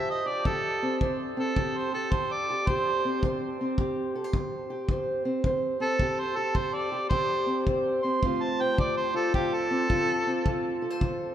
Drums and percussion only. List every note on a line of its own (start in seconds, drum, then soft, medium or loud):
0.45 kick medium
1.01 kick medium
1.56 kick medium
2.12 kick medium
2.67 kick medium
3.23 kick medium
3.78 kick medium
4.33 kick medium
4.89 kick medium
5.44 kick medium
5.99 kick medium
6.55 kick medium
7.11 kick medium
7.67 kick medium
8.23 kick medium
8.78 kick medium
9.34 kick medium
9.90 kick medium
10.46 kick medium
11.01 kick medium